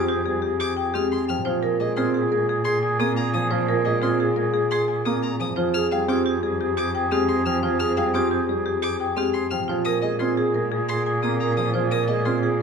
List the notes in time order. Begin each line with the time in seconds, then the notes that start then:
Already playing: F2 C4 F4 G4
0.09 G4 G#4
0.26 G3 G#4
0.42 G4 G#4
0.60 G4 G#4 D6
0.77 G#4 G5
0.94 G#3 C4 G4 G#4 F6
1.12 G#4 C6
1.28 F3 G5 F6
1.45 A#2 F3 F4 G#4 C5
1.63 G#4 A#4
1.80 G#3 G#4 D#5 G#5
1.97 C4 F4 G#4 C6
2.14 G#4
2.31 G#3 G#4 A#4
2.49 G#4
2.65 G#4 C6
2.83 G#4 G#5
2.99 A#3 C4 G#4 D#6
3.16 G#4 A#5
3.34 F3 G#4 G#5 D#6
3.51 F3 F4 G#4 C5
3.68 G#4 A#4
3.85 G#3 G#4 D#5 G#5
4.02 C4 F4 G#4 C6
4.19 G#4
4.36 G#3 G#4 A#4
4.54 G#4
4.71 G#4 C6
4.88 G#4 G#5
5.05 A#3 C4 G#4 D#6
5.23 G#4 A#5
5.40 F3 G#5 D#6
5.56 F2 F3 F4 G#4 C5
5.74 G#4 F6
5.91 G3 G#4 F5 G5
6.08 C4 F4 G4 G#4 D6
6.26 G4 G#4
6.43 G3 G#4
6.61 G4 G#4
6.77 G4 G#4 D6
6.95 G#4 G5
7.11 G#3 C4 G4 G#4 F6
7.28 G#4 C6
7.45 F3 G#4 G5 F6
7.63 F3 F4 G#4 C5
7.79 G#4 F6
7.97 G3 G#4 F5 G5
8.14 C4 F4 G4 G#4 D6
8.31 G4 G#4
8.49 G3 G#4
8.65 G4 G#4
8.82 G4 G#4 D6
8.99 G#4 G5
9.17 G#3 C4 G4 G#4 F6
9.34 G#4 C6
9.51 F3 G5 F6
9.68 A#2 F3 F4 G#4 C5
9.85 G#4 A#4 D#6
10.02 G#3 G#4 D#5 G#5
10.19 C4 F4 G#4 C6
10.37 G#4
10.54 G#3 G#4 A#4
10.72 G#4
10.88 G#4 C6
11.06 G#4 G#5
11.22 A#3 C4 G#4 D#6
11.40 G#4 A#4 A#5
11.57 F3 G#4 G#5 D#6
11.74 F3 F4 G#4 C5
11.91 G#4 A#4 D#6
12.08 G#3 G#4 D#5 G#5
12.25 C4 F4 G#4 C6
12.43 G#4